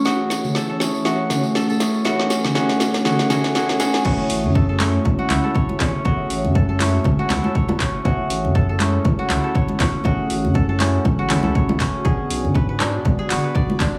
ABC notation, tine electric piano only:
X:1
M:4/4
L:1/8
Q:"Swing 16ths" 1/4=120
K:F#m
V:1 name="Tine electric piano"
[A,CEG]3 [A,CEG] [A,CEG]3 [A,CEG] | [A,CEG]2 [A,CEG]2 [A,CEG] [A,CEG] [A,CEG] [A,CEG] | [A,CEG]3 [A,CEG]4- [A,CEG] | [A,CEG]3 [A,CEG]4- [A,CEG] |
[A,CEG]3 [A,CEG]4- [A,CEG] | [A,CEG]3 [A,CEG]2 [A,CEG]3 | [B,DFG]3 [B,DFG]4- [B,DFG] |]